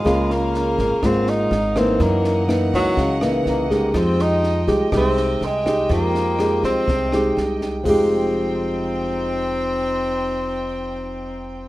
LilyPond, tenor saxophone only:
\new Staff \with { instrumentName = "Tenor saxophone" } { \time 4/4 \key f \minor \tempo 4 = 123 aes8 bes4. c'8 ees'4 c'8 | bes4 r8 ges4 r8 bes8 bes8 | c'8 ees'4 r8 c'4 aes4 | bes4. c'2 r8 |
c'1~ | c'1 | }